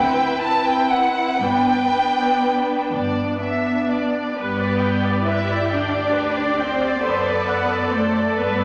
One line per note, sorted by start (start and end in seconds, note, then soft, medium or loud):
0.00 1.21 D2 soft
0.00 1.22 D3 medium
0.00 0.41 C4 soft
0.00 0.41 E4 soft
0.00 1.39 B4 medium
0.00 0.41 G5 medium
0.42 1.39 C4 soft
0.42 1.39 E4 soft
0.42 0.65 A5 medium
0.65 0.90 G5 medium
0.90 1.40 F#5 soft
1.40 2.74 G1 soft
1.40 2.75 G2 soft
1.40 1.90 B3 soft
1.40 1.90 D4 soft
1.40 2.80 B4 soft
1.40 2.93 G5 medium
1.92 3.37 B3 soft
1.92 3.37 D4 soft
2.92 4.18 G1 soft
2.92 4.20 G2 soft
2.92 3.37 D5 soft
3.40 4.35 B3 soft
3.40 4.35 D4 soft
3.40 3.90 E5 soft
3.90 4.37 D5 soft
4.36 5.48 G2 soft
4.36 5.22 B3 medium
4.36 6.98 G4 soft
4.36 4.57 B4 soft
4.36 5.23 B4 medium
4.36 8.64 D5 soft
4.59 4.81 D5 soft
4.82 5.04 G5 soft
5.04 5.26 D5 soft
5.26 5.71 E4 medium
5.26 5.48 B4 soft
5.26 5.71 E5 medium
5.49 5.70 D5 soft
5.70 6.80 D2 soft
5.70 6.58 D4 medium
5.70 6.58 D5 soft
5.70 5.92 G5 soft
5.91 6.13 D5 soft
6.13 6.36 B4 soft
6.35 6.58 D5 soft
6.56 7.03 C4 medium
6.56 7.03 C5 soft
6.56 6.79 G5 soft
6.79 7.02 D5 soft
7.01 8.15 F#2 medium
7.01 7.91 B3 medium
7.01 8.64 A4 soft
7.01 7.92 B4 medium
7.01 7.23 C5 soft
7.25 7.47 D5 soft
7.47 7.70 F#5 soft
7.68 7.92 D5 soft
7.92 8.37 A3 medium
7.92 8.36 A4 soft
7.92 8.14 C5 soft
8.12 8.36 D5 soft
8.35 8.64 G2 soft
8.35 8.64 B3 medium
8.35 8.57 B4 soft
8.35 8.64 B4 medium
8.57 8.64 D5 soft